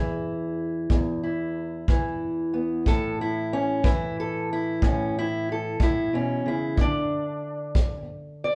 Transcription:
Already playing: E2 E3 E4 G#4
0.90 E2, kick
1.23 E4
1.88 E3 E4, kick
2.54 B3
2.86 A2 A4, kick
3.21 E4
3.53 C#4
3.84 E3 E4, kick
4.20 A4
4.53 E4
4.82 A2 C#4, kick
5.19 E4
5.52 A4
5.80 A2 E4, kick
6.13 B2 C#4
6.46 C#3 E4
6.77 D3 D4, kick
7.75 kick
8.44 D5

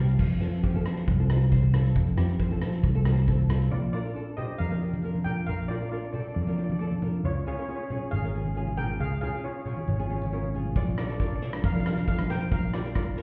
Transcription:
Already playing: C2 C4 F4 G4 F5
0.08 closed hi-hat
0.19 F2, kick, crash
0.40 F2 C4 F4 A4, closed hi-hat
0.53 closed hi-hat
0.63 C4 F4 G4, kick, closed hi-hat
0.74 C4 F4 A4, high conga
0.86 C4 F4 C5, cross-stick, closed hi-hat
0.97 closed hi-hat
1.07 C2, kick, closed hi-hat, high conga
1.19 C4 F4 A4
1.29 C4 F4 C5, cross-stick, closed hi-hat
1.41 closed hi-hat
1.51 C4 F4 C5, kick, closed hi-hat, low conga
1.63 high conga
1.73 C4 F4 A4, cross-stick, closed hi-hat, low conga
1.85 closed hi-hat
1.96 F2, kick, closed hi-hat
2.17 F2 C4 F4 G4, cross-stick, closed hi-hat
2.29 closed hi-hat
2.39 C4 F4 C5, kick, closed hi-hat
2.51 C4 F4 A4, high conga
2.61 C4 F4 A4, cross-stick, closed hi-hat, low conga
2.73 closed hi-hat
2.83 C2, kick, closed hi-hat, high conga
2.95 C4 F4 A4
3.05 C4 F4 C5, cross-stick, closed hi-hat
3.17 closed hi-hat
3.27 C4 F4 A4, kick, closed hi-hat, low conga
3.39 high conga
3.49 C4 F4 A4, cross-stick, closed hi-hat, low conga
3.61 closed hi-hat
3.71 A#1 F4 D5
3.93 D4 F4 A#4 D5
4.05 D4 F4 A#4
4.15 D4 F4 A4
4.37 D4 F4 G4 C5 D#5, low conga
4.58 F2 A#4 F5
4.71 D4 F4 A#4, high conga
4.81 D4 F4 G4
4.94 high conga
5.04 D4 F4 A#4
5.15 high conga
5.24 D4 F4 A#4 G5, low conga
5.46 A#1 A#4 F5
5.68 D4 F4 A#4 D5
5.81 D4 F4 A#4
5.89 D4 F4 A#4 D5
5.97 D5
6.05 D5
6.13 D4 F4 A4 D5, low conga
6.20 D5
6.28 D5
6.35 F2 D5
6.42 D5
6.47 D4 F4 A#4 D5, high conga
6.57 D4 F4 G4 D5
6.64 D5
6.70 D5, high conga
6.79 D4 F4 A4 D5
6.87 D5
6.92 high conga
7.02 D4 F4 A#4, low conga
7.24 C#2 F4 C#5
7.46 C#4 F4 G#4 C#5
7.55 C#4 F4 A#4 C#5
7.62 C#5
7.68 C#4 F4 G#4 C#5
7.76 C#5
7.83 C#5
7.90 C#4 F4 G#4 C#5, low conga
7.97 C#5
8.11 G#1 G#4 F5
8.23 C#4 F4 A#4, high conga
8.34 C#4 F4 G#4
8.45 high conga
8.56 C#4 F4 G#4
8.67 high conga
8.77 C#4 F4 G#4 A#4 G5, low conga
9.00 C#2 G#4 F5
9.21 C#4 F4 G#4 F5, low conga
9.34 C#4 F4 G#4
9.44 C#4 F4 G#4 C#5
9.53 C#5
9.60 C#5
9.65 C#4 F4 G#4 C#5, low conga
9.73 C#5, high conga
9.81 C#5
9.88 G#1 C#5, high conga
9.96 C#4 F4 C#5, high conga
10.00 G#4
10.04 C#5
10.10 C#4 F4 G#4 C#5
10.18 C#5, high conga
10.26 C#5
10.32 C#4 F4 A#4 C#5
10.41 C#5, high conga
10.54 C#4 F4 G#4, low conga
10.66 low conga
10.76 A#1 F4 D5, kick, closed hi-hat
10.98 D4 F4 A#4 D5, cross-stick, closed hi-hat
11.07 D4 F4 A4 D5, closed hi-hat
11.14 D5
11.20 D4 F4 A#4 D5, kick, closed hi-hat
11.28 D5
11.36 D5
11.42 D4 F4 A4 D5, closed hi-hat, low conga
11.50 D5, cross-stick, closed hi-hat
11.64 F2 A#4 F5, kick, closed hi-hat
11.73 D4 F4 A#4 F5, high conga
11.80 F5
11.86 D4 F4 A#4 F5, cross-stick, closed hi-hat
11.94 F5, closed hi-hat, high conga
12.01 F5
12.07 D4 F4 A4 F5, kick, closed hi-hat
12.17 F5, cross-stick, high conga
12.30 D4 F4 A#4 C5 G5, closed hi-hat, low conga
12.41 closed hi-hat
12.51 A#1 A#4 F5, kick, closed hi-hat
12.74 D4 F4 G4 D5, cross-stick, closed hi-hat
12.85 D4 F4 A#4, closed hi-hat
12.95 D4 F4 A#4 D5, kick, cross-stick, closed hi-hat
13.17 D4 F4 A#4, closed hi-hat

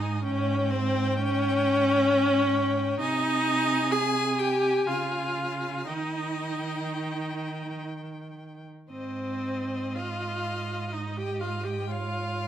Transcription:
Already playing: G#2 D#4 D#5 G#5
0.24 C#4 C#5 G5
0.70 C4 C5
1.17 C#4 C#5
3.00 C3 D#4 D#5 G#5
3.92 G#4 G#5
4.39 G4 G5
4.87 C#3 F4 F5
5.87 D#3 D#4 D#5 G5
8.90 G#2 C4 C5 D#5
9.96 F4 F5
10.93 D#4 D#5
11.17 G4 G5
11.41 F4 F5
11.64 G4 G5
11.90 F4 C#5 F5

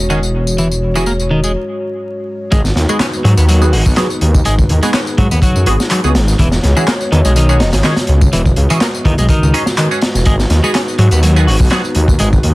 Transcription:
Already playing: E1 G#3 F#4 C#5
0.10 D#3 C#4 F#4 G#4, tambourine
0.23 tambourine
0.47 tambourine
0.58 E3, tambourine
0.71 tambourine
0.95 E3 C#4 F#4 G#4, tambourine
1.06 A#3, tambourine
1.20 tambourine
1.31 D#3
1.44 G#3, tambourine
2.52 G#1 G#3 D#4 F#4 B4, kick, closed hi-hat, tambourine
2.65 snare, tambourine
2.76 D#2, snare, closed hi-hat
2.89 G#3 B3 F#4 G#4, tambourine
3.00 C#4, snare, clap, closed hi-hat, tambourine
3.13 tambourine
3.24 G#2 F#3, closed hi-hat
3.37 D#2 B3, closed hi-hat, tambourine
3.49 F#3, closed hi-hat, tambourine
3.61 B3 F#4 G#4, tambourine
3.73 G#1 F#4, open hi-hat
3.86 B1, kick, tambourine
3.97 F#3 B3 F#4 G#4, snare, clap, closed hi-hat, tambourine
4.10 tambourine
4.21 D#2, closed hi-hat
4.34 kick, tambourine
4.45 G#1 G#3 G#4, closed hi-hat, tambourine
4.59 kick, tambourine
4.69 D#2, closed hi-hat
4.83 G#3 B3 F#4 G#4, closed hi-hat, tambourine
4.94 C#4, snare, clap, closed hi-hat, tambourine
5.07 tambourine
5.18 G#2 F#3, kick, closed hi-hat
5.31 D#2 B3, closed hi-hat, tambourine
5.42 F#3, kick, closed hi-hat, tambourine
5.56 F#2, tambourine
5.66 G#1 B3 F#4 G#4, closed hi-hat
5.80 snare, tambourine
5.91 F#3, clap, closed hi-hat, tambourine
6.04 C#2 B3 F#4 G#4, tambourine
6.15 G#1, snare, closed hi-hat
6.28 snare, tambourine
6.39 E1 E3 F#4 C#5, kick, closed hi-hat, tambourine
6.52 snare, tambourine
6.63 C#2, snare, closed hi-hat
6.76 E3 C#4 F#4 G#4, tambourine
6.87 A#3, snare, clap, closed hi-hat, tambourine
7.01 tambourine
7.12 E2 D#3, closed hi-hat
7.25 B1 G#3, closed hi-hat, tambourine
7.36 D#3, closed hi-hat, tambourine
7.49 C#4 F#4 G#4, tambourine
7.60 E1 D#4, snare, closed hi-hat
7.73 G#1, snare, closed hi-hat, tambourine
7.84 D#3 C#4 F#4 G#4, snare, clap, closed hi-hat, tambourine
7.96 snare, closed hi-hat, tambourine
8.07 C#2, closed hi-hat
8.21 kick, tambourine
8.32 E1 E3 B4, closed hi-hat, tambourine
8.46 kick, tambourine
8.56 C#2, closed hi-hat
8.70 E3 C#4 F#4 G#4, closed hi-hat, tambourine
8.81 A#3, snare, clap, closed hi-hat, tambourine
8.95 tambourine
9.05 E2 D#3, kick, closed hi-hat
9.18 B1 G#3, closed hi-hat, tambourine
9.29 D#3, kick, closed hi-hat, tambourine
9.42 C#2, tambourine
9.54 C#4 D#4 F#4 G#4, closed hi-hat
9.66 snare, tambourine
9.77 D#3, clap, closed hi-hat, tambourine
9.91 C#4 F#4 G#4, tambourine
10.01 snare, closed hi-hat
10.14 E1, snare, tambourine
10.25 G#1 G#3 D#4, kick, closed hi-hat, tambourine
10.39 snare, tambourine
10.50 D#2, snare, closed hi-hat
10.64 G#3 B3 F#4 G#4, tambourine
10.75 C#4, snare, clap, closed hi-hat, tambourine
10.88 tambourine
10.98 G#2 F#3, closed hi-hat
11.11 D#2 B3, closed hi-hat, tambourine
11.23 F#3, closed hi-hat, tambourine
11.36 B3 F#4 G#4, tambourine
11.47 G#1 F#4, open hi-hat
11.60 B1, kick, tambourine
11.70 F#3 B3 F#4 G#4, snare, clap, closed hi-hat, tambourine
11.85 tambourine
11.95 D#2, closed hi-hat
12.08 kick, tambourine
12.19 G#1 G#3, closed hi-hat, tambourine
12.33 kick, tambourine
12.43 D#2, closed hi-hat

